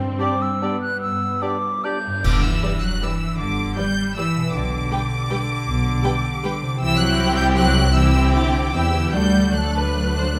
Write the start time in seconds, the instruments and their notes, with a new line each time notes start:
Already playing: double bass section G2, timpani G2, harp G2 G3 D4 D5, cello section G3, viola section C4, french horn section C4
0.19 bassoon D4, clarinet G4, violin section G4 D5, cor anglais D5, flute D6
0.42 flute E6
0.62 viola section B3, french horn section B3, bassoon D4, clarinet G4, violin section G4 D5, cor anglais D5
0.81 flute F#6
1.01 double bass section G2, flute E6
1.42 bassoon D4, violin section G4 D5, clarinet G4, cor anglais D5, flute D6
1.84 bassoon D4, violin section G4 D5, clarinet G4, cor anglais D5, flute G6
2.07 harp G2
2.11 harp B3
2.15 harp D4
2.20 cello section D3, harp D5
2.24 double bass section G1, violin section D6, concert bass drum, crash
2.42 cello section E3, violin section E6
2.62 viola section G3 G4, violin section B4 D5
2.82 cello section F#3, violin section F#6
3.02 cello section E3, viola section G3 G4, violin section B4 D5 E6
3.38 double bass section G1, cello section D3, violin section D6
3.76 viola section G3 G4, cello section G3, violin section B4 D5 G6
4.16 cello section E3, viola section G3 G4, violin section B4 D5 E6
4.36 harp B2
4.40 harp B3
4.45 harp G4
4.49 harp D5
4.53 double bass section B1, cello section D3, violin section D6
4.91 viola section G3 G4, violin section B4 G5
5.30 viola section G3 G4, violin section B4 G5
5.66 double bass section B1
6.03 viola section G3 G4, violin section B4 G5
6.43 viola section G3 G4, violin section B4 G5
6.62 harp C3
6.67 harp E4
6.71 harp G4
6.76 harp C5
6.80 double bass section C2, cello section E3, viola section C4 E4, violin section G4 G5 E6
6.98 cello section F#3, violin section F#6
7.37 cello section G3, violin section G6
7.57 cello section F#3, violin section F#6
7.94 cello section E3, viola section C4 E4, violin section G4 G5 E6
8.33 cello section D3, violin section D6
8.74 double bass section E2, cello section E3, viola section C4 E4, violin section G4 G5 E6
8.94 harp D3, viola section B3
9.00 harp D4
9.04 harp A4
9.13 double bass section D2, cello section G3, viola section A3 D4, violin section F#4 D5 G6
9.54 cello section F#3, viola section A3 D4, violin section A4 F#6
9.76 violin section B4
10.18 violin section C5